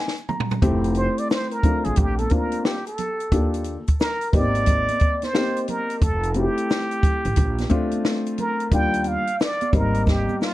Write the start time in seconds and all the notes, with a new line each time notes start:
Already playing: G#5
0.08 snare
0.17 shaker
0.29 A#5, mid tom, high conga, low conga, shaker
0.40 floor tom
0.51 floor tom, shaker
0.62 F1 A3 C4 E4 G4, kick, closed hi-hat, shaker
0.84 closed hi-hat, shaker
0.95 C5, closed hi-hat, shaker
1.18 D5, closed hi-hat, shaker
1.30 C5, snare, shaker
1.51 A#4, closed hi-hat, shaker
1.63 A3 C4 D4 F4, kick, closed hi-hat, low conga, shaker
1.84 A1 G#4, closed hi-hat, shaker
1.96 A#1 G4, kick, closed hi-hat, low conga, shaker
2.19 A4, closed hi-hat, high conga, shaker
2.30 A#3 C4 D4 F4 A#4, kick, closed hi-hat, shaker
2.52 closed hi-hat, high conga, shaker
2.65 G4, snare, shaker
2.87 A4, closed hi-hat, shaker
2.98 closed hi-hat, high conga, low conga, shaker
3.20 closed hi-hat, shaker
3.31 D#2 A#3 D4 F4 G4, kick, closed hi-hat, shaker
3.54 closed hi-hat, shaker
3.64 closed hi-hat, shaker
3.88 kick, closed hi-hat, shaker
4.00 A#4, snare, shaker
4.21 closed hi-hat, shaker
4.33 G#1 A#3 B3 D#4 G4 D5, kick, closed hi-hat, low conga, shaker
4.40 C4
4.55 closed hi-hat, shaker
4.66 kick, closed hi-hat, low conga, shaker
4.88 closed hi-hat, high conga, shaker
5.00 kick, closed hi-hat, shaker
5.22 C5, snare, closed hi-hat, high conga, shaker
5.33 A#3 B3 D#4 G4, snare, shaker
5.41 C4
5.57 closed hi-hat, shaker
5.68 A#4, closed hi-hat, high conga, low conga, shaker
5.90 closed hi-hat, shaker
6.02 F1 A4, kick, closed hi-hat, shaker
6.23 closed hi-hat, shaker
6.34 A3 C4 E4 F#4 G4, closed hi-hat, shaker
6.43 G4
6.58 closed hi-hat, shaker
6.70 snare, shaker
6.91 closed hi-hat, shaker
7.03 kick, closed hi-hat, low conga, shaker
7.25 A1, closed hi-hat, shaker
7.36 A#1, kick, closed hi-hat, low conga, shaker
7.58 snare, closed hi-hat, high conga, shaker
7.69 A3 C4 D4 F4, kick, closed hi-hat, shaker
7.91 closed hi-hat, high conga, shaker
8.05 snare, shaker
8.26 closed hi-hat, shaker
8.38 A#4, closed hi-hat, high conga, low conga, shaker
8.60 closed hi-hat, shaker
8.71 D#2 G3 A#3 D4 F4 G5, kick, closed hi-hat, shaker
8.94 closed hi-hat, shaker
9.04 closed hi-hat, high conga, shaker
9.08 F5
9.27 closed hi-hat, shaker
9.40 D5, snare, shaker
9.61 closed hi-hat, high conga, shaker
9.73 G#1 G3 A#3 C4 D#4 A#4, kick, closed hi-hat, low conga, shaker
9.94 closed hi-hat, shaker
10.07 G4, kick, snare, low conga, shaker
10.29 high conga, shaker
10.41 F4, snare, shaker